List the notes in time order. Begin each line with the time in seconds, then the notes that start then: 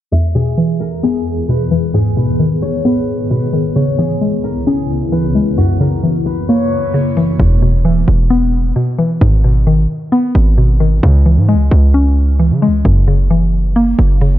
0.12 E2 E3 B3 G#4 E5
0.35 B2 G#4
0.58 E3
0.80 A#4
1.03 B3 G#4
1.49 B2 B4
1.71 E3
1.94 G#2 D#3 G#4
2.17 B2 B4
2.40 D#3
2.62 C#5
2.85 B3 B4
3.31 B2 B4
3.53 D#3
3.76 C#2 C#3 E4 C#5
3.98 E3 G#4
4.21 G#3
4.44 A#4
4.67 C#4 G#4
5.12 E3 B4
5.35 G#3
5.58 F#2 A#3 F#4
5.80 C#3 A#4
6.03 E3
6.26 B4
6.49 A#3 C#5
6.94 C#3
7.17 E3
7.39 E1 E2
7.62 B2
7.85 E3
8.08 E1
8.30 B3
8.76 B2
8.99 E3
9.21 G#1 G#2
9.44 B2
9.67 D#3
10.12 B3
10.35 G#1
10.58 B2
10.80 D#3
11.03 C#2 C#3
11.26 E3
11.37 G#2
11.49 G#3
11.54 C#2
11.71 C#2
11.94 C#4
12.39 E3
12.51 C#3
12.62 G#3
12.68 C#2
12.85 F#1 F#2
13.08 C#3
13.31 E3
13.76 A#3
13.99 F#1
14.21 C#3